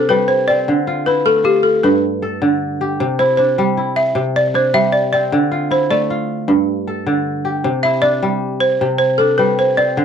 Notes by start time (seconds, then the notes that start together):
Already playing: C3 D4 E4 A4
0.09 G3 B4
0.28 C5
0.48 C4 D5
0.68 D3
0.87 F4
1.06 E4 B4
1.25 A3 A4
1.44 F4 G4
1.63 A4
1.83 G2 B4
2.22 A4
2.42 D3
2.81 G4
3.00 C3
3.19 E4 C5
3.37 D4 C5
3.58 G3
3.77 E4
3.96 E5
4.15 C3
4.36 D5
4.54 D4 C5
4.74 G3 E5
4.92 D5
5.13 C4 D5
5.32 D3
5.52 F4
5.71 E4 C5
5.90 A3 D5
6.10 F4
6.48 G2
6.87 A4
7.07 D3
7.45 G4
7.64 C3
7.83 E4 E5
8.02 D4 D5
8.23 G3
8.60 C5
8.81 C3
8.98 C5
9.18 D4 A4
9.38 G3 B4
9.59 C5
9.77 C4 D5
9.97 D3